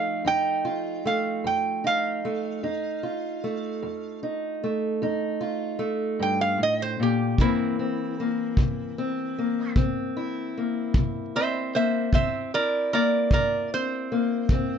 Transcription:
Already playing: steel-string acoustic guitar F3 A3 D#4 F4, resonator guitar played with a steel bar F5
0.25 steel-string acoustic guitar F2 D#4, resonator guitar played with a steel bar G5
0.65 steel-string acoustic guitar F4
1.05 steel-string acoustic guitar A3, resonator guitar played with a steel bar F5
1.44 steel-string acoustic guitar F2, resonator guitar played with a steel bar G5
1.84 steel-string acoustic guitar D#4, resonator guitar played with a steel bar F5
2.25 steel-string acoustic guitar A3
2.63 steel-string acoustic guitar F2 D#4
3.03 steel-string acoustic guitar F4
3.44 steel-string acoustic guitar A3
3.83 steel-string acoustic guitar F2
4.23 steel-string acoustic guitar D#4
4.64 steel-string acoustic guitar A3
5.02 steel-string acoustic guitar F2 D#4
5.41 steel-string acoustic guitar F4
5.79 steel-string acoustic guitar A3
6.19 steel-string acoustic guitar G2, resonator guitar played with a steel bar G5
6.41 resonator guitar played with a steel bar F5
6.58 steel-string acoustic guitar A2
6.63 resonator guitar played with a steel bar D#5
6.82 resonator guitar played with a steel bar C5
7.00 steel-string acoustic guitar A#2, resonator guitar played with a steel bar G4
7.38 steel-string acoustic guitar C3 E3 A#3 C4, resonator guitar played with a steel bar E4, kick
7.79 steel-string acoustic guitar C4
8.20 steel-string acoustic guitar A#3
8.57 steel-string acoustic guitar C3, kick
8.98 steel-string acoustic guitar C4
9.38 steel-string acoustic guitar A#3
9.76 steel-string acoustic guitar C3 C4, kick
10.17 steel-string acoustic guitar E4
10.58 steel-string acoustic guitar A#3
10.94 steel-string acoustic guitar C3, kick
11.36 steel-string acoustic guitar C4, resonator guitar played with a steel bar C5 E5
11.75 steel-string acoustic guitar A#3, resonator guitar played with a steel bar C5 E5
12.13 steel-string acoustic guitar C3 C4, resonator guitar played with a steel bar C5 E5, kick
12.54 steel-string acoustic guitar E4, resonator guitar played with a steel bar A#4 D5
12.93 steel-string acoustic guitar A#3, resonator guitar played with a steel bar A#4 D5
13.31 steel-string acoustic guitar C3, resonator guitar played with a steel bar A#4 D5, kick
13.74 steel-string acoustic guitar C4, resonator guitar played with a steel bar C5
14.12 steel-string acoustic guitar A#3
14.49 steel-string acoustic guitar C3 C4, kick

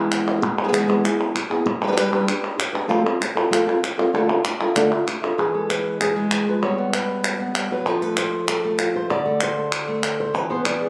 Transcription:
Already playing: nylon-string guitar E3 G#3 B3 E4
0.12 nylon-string guitar B3, clap
0.42 muted nylon-string guitar stroke
0.64 nylon-string guitar G#3 B3 E4 G#4
0.68 nylon-string guitar G#3 B3 E4 G#4
0.72 nylon-string guitar E3 G#3 B3 E4 G#4, clap
0.88 nylon-string guitar E3 G#3 B3 E4 G#4, clap
1.03 nylon-string guitar B3 E4 G#4, clap
1.34 muted nylon-string guitar stroke, clap
1.50 nylon-string guitar B3 E4 G#4
1.66 muted nylon-string guitar stroke
1.83 nylon-string guitar G3 D4 G4 B4
1.87 nylon-string guitar G3 D4 G4 B4
1.92 nylon-string guitar G3 D4 G4 B4
1.97 nylon-string guitar G3 D4 G4 B4, clap
2.11 nylon-string guitar G3 D4 G4 B4, clap
2.28 nylon-string guitar D4 G4, clap
2.44 clap
2.58 muted nylon-string guitar stroke, clap
2.73 nylon-string guitar D4 G4 B4, clap
2.88 nylon-string guitar F3 A3 C4 F4 A4
3.04 nylon-string guitar C4 A4, clap
3.20 muted nylon-string guitar stroke, clap
3.35 nylon-string guitar C4 F4 A4
3.50 nylon-string guitar F3 A3 C4 F4 A4, clap
3.67 nylon-string guitar C4 F4 A4, clap
3.82 muted nylon-string guitar stroke, clap
3.98 nylon-string guitar C4 F4 A4
4.13 nylon-string guitar D3 A3 D4 F4 A4 E5
4.29 nylon-string guitar D4 F4 A4 E5, clap
4.44 muted nylon-string guitar stroke, clap
4.60 nylon-string guitar D4 F4 A4 E5
4.75 nylon-string guitar D3 A3 D4 F4 A4 E5, clap
4.91 nylon-string guitar D4 F4 A4 E5, clap
5.07 muted nylon-string guitar stroke, clap
5.22 nylon-string guitar D4 F4 A4 E5, clap
5.38 nylon-string guitar E3 G#4, clap
5.54 nylon-string guitar G#3 A4
5.69 nylon-string guitar B4, clap
6.01 nylon-string guitar G#4, clap
6.16 nylon-string guitar G#3
6.31 nylon-string guitar E3, clap
6.46 nylon-string guitar F3 B4
6.62 nylon-string guitar G3 B3 G4 C#5
6.78 nylon-string guitar B3
6.93 nylon-string guitar B4, clap
7.24 clap
7.40 nylon-string guitar B3
7.55 nylon-string guitar G3, clap
7.71 nylon-string guitar F#3 B4
7.86 nylon-string guitar F3 A4
8.02 nylon-string guitar A3 B4
8.17 nylon-string guitar C5, clap
8.48 nylon-string guitar A4, clap
8.64 nylon-string guitar A3
8.79 nylon-string guitar F4, clap
8.96 nylon-string guitar C5
9.10 nylon-string guitar D3 D5
9.25 nylon-string guitar A3
9.41 nylon-string guitar C5, clap
9.57 nylon-string guitar A4
9.72 clap
9.88 nylon-string guitar A3
10.03 clap
10.20 nylon-string guitar C5
10.34 nylon-string guitar E3 B4
10.50 nylon-string guitar B3 C5
10.65 nylon-string guitar D5, clap
10.81 nylon-string guitar G#4

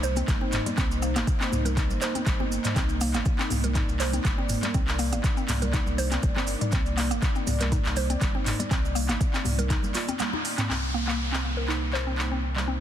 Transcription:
Already playing: sub bass C2, analog synth pad A#3 D#4 C5
0.03 synth arpeggio sound C5, muted conga, low conga, maracas
0.16 synth arpeggio sound C4, closed hi-hat, high conga, maracas
0.28 sub bass G1, kick, clap, closed hi-hat, low conga, maracas
0.41 synth arpeggio sound C4, muted conga
0.52 clap, mid tom, maracas
0.66 synth arpeggio sound G3, closed hi-hat, high conga, maracas
0.77 sub bass C2, synth arpeggio sound C4, kick, clap, closed hi-hat, muted conga, maracas
0.91 maracas
1.02 synth arpeggio sound A#3, maracas
1.16 sub bass G1, synth arpeggio sound A#3, clap, closed hi-hat, high conga, maracas
1.27 kick, closed hi-hat, muted conga, maracas
1.41 synth arpeggio sound C4, clap, maracas
1.52 sub bass C2, mid tom, high conga, maracas
1.65 synth arpeggio sound A#4, closed hi-hat, muted conga, low conga, maracas
1.77 synth arpeggio sound D#4, kick, clap, closed hi-hat, high conga, maracas
1.90 sub bass G1, low conga, maracas
2.01 synth arpeggio sound C5, clap, muted conga, high conga, maracas
2.15 synth arpeggio sound C4, closed hi-hat, high conga, maracas
2.27 sub bass G1, kick, clap, closed hi-hat, low conga, maracas
2.40 synth arpeggio sound C4, muted conga, high conga
2.52 maracas
2.64 synth arpeggio sound G3, clap, closed hi-hat, mid tom, maracas
2.76 sub bass C2, synth arpeggio sound C4, analog synth pad D5, kick, clap, closed hi-hat, muted conga, maracas
2.89 maracas
3.01 synth arpeggio sound A#3, open hi-hat, maracas
3.14 sub bass G1, synth arpeggio sound A#3, clap, closed hi-hat, high conga, maracas
3.25 kick, closed hi-hat, muted conga, maracas
3.39 synth arpeggio sound C4, clap, maracas
3.50 sub bass C2, mid tom, open hi-hat, high conga, maracas
3.64 synth arpeggio sound A#4, closed hi-hat, muted conga, low conga, maracas
3.75 synth arpeggio sound D#4, kick, clap, closed hi-hat, mid tom, maracas
3.89 sub bass C2, maracas
4.00 synth arpeggio sound C5, clap, open hi-hat, muted conga, low conga, maracas
4.13 synth arpeggio sound C4, closed hi-hat, high conga, maracas
4.25 sub bass G1, kick, clap, closed hi-hat, low conga, maracas
4.38 synth arpeggio sound C4, muted conga
4.49 mid tom, open hi-hat, maracas
4.63 synth arpeggio sound G3, clap, closed hi-hat, high conga, maracas
4.74 sub bass C2, synth arpeggio sound C4, kick, closed hi-hat, muted conga, maracas
4.88 clap, maracas
4.99 synth arpeggio sound A#3, open hi-hat, maracas
5.13 sub bass G1, synth arpeggio sound A#3, closed hi-hat, high conga, maracas
5.24 kick, clap, closed hi-hat, maracas
5.37 synth arpeggio sound C4, maracas
5.49 sub bass C2, clap, mid tom, open hi-hat, high conga, maracas
5.62 synth arpeggio sound A#4, closed hi-hat, muted conga, low conga, maracas
5.73 synth arpeggio sound D#4, kick, clap, closed hi-hat, high conga, maracas
5.86 sub bass C2, low conga, maracas
5.97 synth arpeggio sound C5, open hi-hat, muted conga, high conga, maracas
6.11 synth arpeggio sound C4, clap, closed hi-hat, high conga, maracas
6.22 sub bass G1, kick, closed hi-hat, low conga, maracas
6.36 synth arpeggio sound C4, clap, muted conga, high conga
6.47 open hi-hat, maracas
6.61 synth arpeggio sound G3, closed hi-hat, mid tom, maracas
6.72 sub bass C2, synth arpeggio sound C4, kick, clap, closed hi-hat, muted conga, maracas
6.86 maracas
6.97 synth arpeggio sound A#3, clap, open hi-hat, maracas
7.11 sub bass G1, synth arpeggio sound A#3, closed hi-hat, high conga, maracas
7.22 kick, clap, closed hi-hat, muted conga, maracas
7.35 synth arpeggio sound C4, maracas
7.47 sub bass C2, mid tom, open hi-hat, high conga, maracas
7.61 synth arpeggio sound A#4, clap, closed hi-hat, muted conga, low conga, maracas
7.72 synth arpeggio sound D#4, kick, closed hi-hat, mid tom, maracas
7.85 sub bass C2, clap, maracas
7.96 synth arpeggio sound C5, open hi-hat, muted conga, low conga, maracas
8.10 synth arpeggio sound C4, closed hi-hat, high conga, maracas
8.21 sub bass G1, kick, clap, closed hi-hat, low conga, maracas
8.35 synth arpeggio sound C4, muted conga
8.46 clap, mid tom, open hi-hat, maracas
8.59 synth arpeggio sound G3, closed hi-hat, high conga, maracas
8.71 sub bass C2, synth arpeggio sound C4, kick, clap, closed hi-hat, muted conga, maracas
8.85 maracas
8.95 synth arpeggio sound A#3, open hi-hat, maracas
9.09 sub bass G1, synth arpeggio sound A#3, clap, closed hi-hat, high conga, maracas
9.21 kick, closed hi-hat, muted conga, maracas
9.34 synth arpeggio sound C4, clap, maracas
9.45 sub bass C2, mid tom, open hi-hat, high conga, maracas
9.58 synth arpeggio sound A#4, closed hi-hat, muted conga, low conga, maracas
9.70 synth arpeggio sound D#4, kick, clap, closed hi-hat, high conga, maracas
9.83 sub bass G1, low conga, maracas
9.94 synth arpeggio sound F4, clap, open hi-hat, muted conga, high conga, maracas
10.08 synth arpeggio sound C4, closed hi-hat, high conga, maracas
10.19 synth arpeggio sound A#3, clap, closed hi-hat, low conga, maracas
10.33 synth arpeggio sound D#4, muted conga, high conga
10.45 open hi-hat, maracas
10.58 synth arpeggio sound C4, clap, closed hi-hat, mid tom, maracas
10.69 sub bass C2, analog synth pad A#3 D#4 C5, synth arpeggio sound C4, clap, downlifter
10.94 synth arpeggio sound A#3
11.08 synth arpeggio sound A#3, clap
11.32 synth arpeggio sound C4, clap
11.57 synth arpeggio sound A#4
11.68 synth arpeggio sound D#4, clap
11.93 synth arpeggio sound C5, clap
12.07 synth arpeggio sound C4
12.18 clap
12.32 synth arpeggio sound C4
12.56 synth arpeggio sound G3, clap
12.68 synth arpeggio sound C4

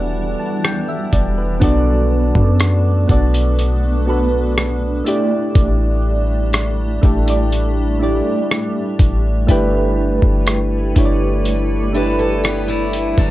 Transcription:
Already playing: 808-style bass E1, ambient pad E3 G3 D4 F#5, synth keys B3 E4 F#4 G4 A4 D5
0.39 synth keys A5
0.64 synth keys G5, cross-stick
0.88 synth keys E5
1.12 808-style bass E1, synth keys D5, kick, closed hi-hat
1.38 synth keys B4
1.60 808-style bass B1, ambient pad A3 B3, synth keys B3 D4 F#4 A4 D5, kick, closed hi-hat
2.35 808-style bass F#2, kick
2.60 cross-stick, closed hi-hat
3.07 808-style bass B1, synth keys B3 D4 F#4 A4, kick, closed hi-hat
3.11 synth keys D5
3.34 closed hi-hat
3.59 closed hi-hat
4.06 synth keys B3 D4 F#4 A4
4.10 synth keys B4
4.58 cross-stick
5.04 ambient pad G3 A3, synth keys A3 D4 E4 G4, closed hi-hat
5.08 synth keys D5
5.55 808-style bass A1, kick, closed hi-hat
6.53 cross-stick, closed hi-hat
7.01 808-style bass A1, synth keys A3 D4 E4 G4 A4, kick, closed hi-hat
7.26 synth keys A3 D4 E4 G4, closed hi-hat
7.30 synth keys D5
7.53 closed hi-hat
7.99 synth keys A3 D4 E4 G4 D5
8.52 cross-stick
9.00 808-style bass A1, kick, closed hi-hat
9.47 808-style bass G1, synth keys A3 D4 E4 G4, ambient pad E4 A4 B4, kick, closed hi-hat
9.51 synth keys B4
10.22 808-style bass G1, kick
10.47 cross-stick, closed hi-hat
10.95 808-style bass G1, synth keys A3 D4 E4 G4 C#5, kick, closed hi-hat
11.05 synth keys D5
11.46 closed hi-hat
11.93 synth keys A3 D4 E4 G4, steel-string acoustic guitar D4 B4
11.97 synth keys B4
12.19 steel-string acoustic guitar A4
12.44 steel-string acoustic guitar B3 G4, cross-stick
12.68 steel-string acoustic guitar G3 E4
12.93 closed hi-hat
13.17 808-style bass G1, steel-string acoustic guitar F#3 D4, kick

